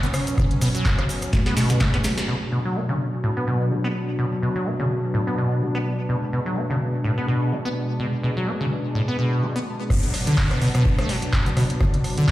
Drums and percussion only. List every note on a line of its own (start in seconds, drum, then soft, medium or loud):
0.03 closed hi-hat medium
0.03 mid tom medium
0.14 cross-stick medium
0.14 open hi-hat medium
0.14 cabasa medium
0.27 closed hi-hat medium
0.27 cabasa soft
0.38 kick loud
0.38 cross-stick medium
0.38 mid tom medium
0.38 cabasa soft
0.51 closed hi-hat medium
0.61 cross-stick soft
0.61 open hi-hat loud
0.61 cabasa medium
0.75 closed hi-hat medium
0.75 cabasa soft
0.85 kick loud
0.85 clap loud
0.85 cabasa soft
0.98 cross-stick medium
0.98 closed hi-hat soft
1.09 open hi-hat medium
1.09 cabasa medium
1.22 cross-stick soft
1.22 closed hi-hat medium
1.22 cabasa medium
1.33 kick loud
1.33 snare medium
1.33 cabasa soft
1.46 snare medium
1.46 closed hi-hat soft
1.57 snare medium
1.57 open hi-hat loud
1.57 cabasa medium
1.69 snare medium
1.69 closed hi-hat medium
1.69 mid tom medium
1.69 cabasa medium
1.80 kick loud
1.80 snare medium
1.80 clap loud
1.80 cabasa soft
1.94 kick medium
1.94 snare medium
1.94 closed hi-hat medium
2.04 snare loud
2.04 open hi-hat loud
2.04 cabasa medium
2.18 snare medium
2.18 closed hi-hat medium
2.18 cabasa soft
9.90 kick loud
9.90 cross-stick medium
10.03 closed hi-hat medium
10.14 cross-stick soft
10.14 open hi-hat loud
10.27 closed hi-hat medium
10.38 kick loud
10.38 clap loud
10.51 cross-stick medium
10.51 closed hi-hat soft
10.61 open hi-hat medium
10.75 cross-stick medium
10.75 closed hi-hat medium
10.85 kick loud
10.99 cross-stick medium
10.99 closed hi-hat soft
11.09 open hi-hat loud
11.22 closed hi-hat medium
11.33 kick loud
11.33 cross-stick soft
11.33 clap loud
11.46 closed hi-hat medium
11.46 mid tom medium
11.57 cross-stick medium
11.57 open hi-hat loud
11.70 closed hi-hat medium
11.81 kick loud
11.81 cross-stick medium
11.81 mid tom medium
11.94 closed hi-hat medium
12.04 cross-stick soft
12.04 open hi-hat loud
12.18 closed hi-hat medium
12.28 kick loud